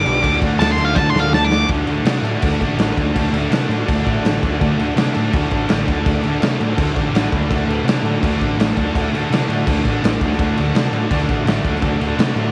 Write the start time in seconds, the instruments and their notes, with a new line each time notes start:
Already playing: lead electric guitar D6
0.04 picked electric bass B1, distorted electric guitar G2 D3 G3, transistor combo organ G4 B4 D5, crash
0.19 transistor combo organ F#4 A4 D5
0.23 picked electric bass D2, distorted electric guitar D3 A3 D4, kick, crash
0.38 picked electric bass D2, transistor combo organ F#4 A4 D5, kick
0.42 distorted electric guitar D3 A3 D4, crash
0.56 picked electric bass D2, transistor combo organ F#4 A4 D5, lead electric guitar A5
0.60 distorted electric guitar D3 A3 D4, snare, crash
0.72 transistor combo organ F#4 A4 C5, lead electric guitar C6
0.77 picked electric bass D2, distorted electric guitar D3 A3, crash
0.81 distorted electric guitar D4, lead electric guitar F5
0.91 transistor combo organ F#4 A4 D5, lead electric guitar A5
0.96 picked electric bass D2, distorted electric guitar D3 A3 D4, kick, snare
1.10 picked electric bass D2, transistor combo organ F#4 A4 D5, lead electric guitar C6
1.16 distorted electric guitar D3 A3 D4, snare
1.20 lead electric guitar F5
1.29 picked electric bass D2, transistor combo organ F#4 A4 D5
1.34 distorted electric guitar D3 A3 D4, lead electric guitar A5, snare
1.45 lead electric guitar D6
1.50 distorted electric guitar D3 A3 D4, transistor combo organ F#4 A4 D5, snare
1.68 picked electric bass D2, distorted electric guitar D3, transistor combo organ F#4 A4 D5, kick, crash
1.72 distorted electric guitar A3 D4
1.86 picked electric bass D2, distorted electric guitar D4, transistor combo organ F#4 A4 D5, crash
1.91 distorted electric guitar A3
2.04 picked electric bass C3, distorted electric guitar D3 A3, transistor combo organ F#4 A4, snare, crash
2.09 distorted electric guitar D4, transistor combo organ D5
2.22 picked electric bass A2, distorted electric guitar D4, transistor combo organ F#4 A4 D5, crash
2.28 distorted electric guitar A3
2.41 picked electric bass D2, distorted electric guitar D3 A3, transistor combo organ F#4 A4 D5, kick, crash
2.46 distorted electric guitar D4
2.60 picked electric bass A1, distorted electric guitar D4, transistor combo organ F#4 A4 D5, kick, crash
2.65 distorted electric guitar A3
2.77 picked electric bass A1, distorted electric guitar D3 A3, transistor combo organ F#4 A4 D5, snare, crash
2.83 distorted electric guitar D4
2.97 picked electric bass D2, distorted electric guitar D4, transistor combo organ F#4 A4 D5, kick, crash
3.02 distorted electric guitar A3
3.15 picked electric bass D2, distorted electric guitar D3 A3, transistor combo organ F#4 A4 D5, kick, crash
3.19 distorted electric guitar D4
3.32 picked electric bass D2, distorted electric guitar D4, transistor combo organ F#4 A4 D5, crash
3.38 distorted electric guitar A3
3.49 picked electric bass C3, distorted electric guitar D3, transistor combo organ F#4 A4 D5, snare, crash
3.53 distorted electric guitar A3 D4
3.69 picked electric bass A2, distorted electric guitar D4, transistor combo organ F#4 A4 D5, crash
3.74 distorted electric guitar A3
3.85 picked electric bass D2, distorted electric guitar D3, transistor combo organ F#4 A4 D5, kick, crash
3.89 distorted electric guitar A3 D4
4.04 picked electric bass A1, distorted electric guitar D4, transistor combo organ F#4 A4 D5, kick, crash
4.09 distorted electric guitar A3
4.21 picked electric bass A1, distorted electric guitar D3, transistor combo organ F#4 A4 D5, crash
4.26 distorted electric guitar A3 D4, snare
4.42 picked electric bass D2, distorted electric guitar A3 D4, transistor combo organ F#4 A4 D5, kick, crash
4.60 picked electric bass D2, distorted electric guitar D3 A3, transistor combo organ F#4 A4 D5, kick, crash
4.64 distorted electric guitar D4
4.78 picked electric bass D2, distorted electric guitar D4, transistor combo organ F#4 A4 D5, crash
4.83 distorted electric guitar A3
4.95 picked electric bass C3, distorted electric guitar D3 A3 D4, transistor combo organ F#4 D5, snare, crash
4.99 transistor combo organ A4
5.14 picked electric bass A2, distorted electric guitar A3 D4, transistor combo organ F#4 A4 D5, crash
5.33 picked electric bass D2, distorted electric guitar D3 A3, transistor combo organ F#4 A4 D5, kick, crash
5.38 distorted electric guitar D4
5.51 picked electric bass A1, distorted electric guitar D4, transistor combo organ F#4 A4 D5, kick, crash
5.55 distorted electric guitar A3
5.69 picked electric bass A1, distorted electric guitar D3 A3, transistor combo organ F#4 A4 D5, snare, crash
5.73 distorted electric guitar D4
5.85 picked electric bass D2, distorted electric guitar D4, transistor combo organ F#4 A4 D5, kick, crash
5.93 distorted electric guitar A3
6.05 picked electric bass D2, distorted electric guitar D3 A3, transistor combo organ F#4 A4 D5, kick, crash
6.09 distorted electric guitar D4
6.23 picked electric bass D2, distorted electric guitar D4, transistor combo organ F#4 A4 D5, crash
6.27 distorted electric guitar A3
6.40 picked electric bass C3, distorted electric guitar D3, transistor combo organ F#4 A4 D5, snare, crash
6.44 distorted electric guitar A3 D4
6.57 picked electric bass A2, distorted electric guitar D4, transistor combo organ F#4 A4 D5, crash
6.65 distorted electric guitar A3
6.75 picked electric bass D2, distorted electric guitar D3, transistor combo organ F#4 A4 C5, kick, crash
6.79 distorted electric guitar A3 D4
6.96 picked electric bass A1, distorted electric guitar D4, transistor combo organ F#4 A4 D5, kick, snare, crash
7.00 distorted electric guitar A3
7.13 picked electric bass A1, distorted electric guitar D3 A3, transistor combo organ F#4 A4 D5 F#5, snare, crash
7.18 distorted electric guitar D4
7.31 picked electric bass D2, distorted electric guitar D4, transistor combo organ F#4 A4 D5 B5, kick, crash
7.37 distorted electric guitar A3
7.49 picked electric bass D2, distorted electric guitar D3 A3 D4, transistor combo organ F#4 A4 D5, kick, crash
7.67 picked electric bass D2, distorted electric guitar D4, transistor combo organ F#4 A4 B4, crash
7.72 distorted electric guitar A3
7.84 picked electric bass C3, distorted electric guitar D3 A3, transistor combo organ F#4 A4 D5, crash
7.89 distorted electric guitar D4, snare
8.02 picked electric bass A2, distorted electric guitar D4, transistor combo organ F#4 A4, crash
8.07 distorted electric guitar A3, transistor combo organ D5
8.20 picked electric bass D2, distorted electric guitar D3 A3, transistor combo organ F#4 A4 D5, kick, crash
8.25 distorted electric guitar D4
8.37 picked electric bass A1, distorted electric guitar D4, transistor combo organ F#4 A4 D5, kick, crash
8.44 distorted electric guitar A3
8.56 picked electric bass A1, distorted electric guitar D3, transistor combo organ F#4 A4 D5, crash
8.60 distorted electric guitar A3 D4, snare
8.77 picked electric bass D2, distorted electric guitar D4, transistor combo organ F#4 A4 D5, kick, crash
8.82 distorted electric guitar A3
8.93 picked electric bass D2, distorted electric guitar D3 A3, transistor combo organ F#4 D5, kick, crash
8.97 distorted electric guitar D4, transistor combo organ A4
9.11 picked electric bass D2, distorted electric guitar D4, transistor combo organ F#4 A4, crash
9.16 distorted electric guitar A3, transistor combo organ D5
9.30 picked electric bass C3, distorted electric guitar D3 A3, transistor combo organ F#4, snare, crash
9.34 distorted electric guitar D4, transistor combo organ A4 D5
9.48 picked electric bass A2, distorted electric guitar D4, transistor combo organ F#4 A4, crash
9.53 distorted electric guitar A3, transistor combo organ D5
9.66 picked electric bass D2, distorted electric guitar D3 A3, transistor combo organ F#4 A4 D5, kick, crash
9.71 distorted electric guitar D4
9.84 picked electric bass A1, distorted electric guitar D4, transistor combo organ F#4 A4 D5, kick, snare, crash
9.88 distorted electric guitar A3
10.03 picked electric bass A1, distorted electric guitar D3 A3, transistor combo organ F#4 A4 D5, snare, crash
10.07 distorted electric guitar D4
10.21 picked electric bass D2, distorted electric guitar A3 D4, transistor combo organ F#4, kick, crash
10.25 transistor combo organ A4 D5
10.33 snare
10.37 picked electric bass D2, distorted electric guitar D3 A3, transistor combo organ F#4 D5, kick, crash
10.41 distorted electric guitar D4, transistor combo organ A4
10.57 picked electric bass D2, distorted electric guitar D4, transistor combo organ F#4 A4 D5, crash
10.61 distorted electric guitar A3
10.74 picked electric bass C3, distorted electric guitar D3 A3, transistor combo organ F#4 A4 D5, snare, crash
10.79 distorted electric guitar D4
10.91 picked electric bass A2, distorted electric guitar D4, transistor combo organ F#4 A4, crash
10.96 distorted electric guitar A3, transistor combo organ D5
11.09 picked electric bass D2, distorted electric guitar D3 A3 D4, transistor combo organ F#4, kick, crash
11.13 transistor combo organ A4 D5
11.27 picked electric bass A1, distorted electric guitar D4, transistor combo organ F#4 A4 D5, kick, crash
11.31 distorted electric guitar A3
11.45 picked electric bass A1, distorted electric guitar D3 A3, transistor combo organ F#4 A4 D5, snare, crash
11.49 distorted electric guitar D4
11.64 picked electric bass D2, distorted electric guitar D4, transistor combo organ F#4 A4 D5, kick, crash
11.69 distorted electric guitar A3
11.75 snare
11.81 picked electric bass D2, distorted electric guitar D3 A3, transistor combo organ F#4 A4 D5, kick, crash
11.86 distorted electric guitar D4
12.00 picked electric bass D2, distorted electric guitar A3 D4, transistor combo organ F#4 A4 D5, crash
12.17 picked electric bass C3, distorted electric guitar D3 A3, transistor combo organ F#4, snare, crash
12.22 distorted electric guitar D4, transistor combo organ A4 D5
12.34 picked electric bass A2, distorted electric guitar D4, transistor combo organ F#4 A4, crash
12.39 distorted electric guitar A3, transistor combo organ D5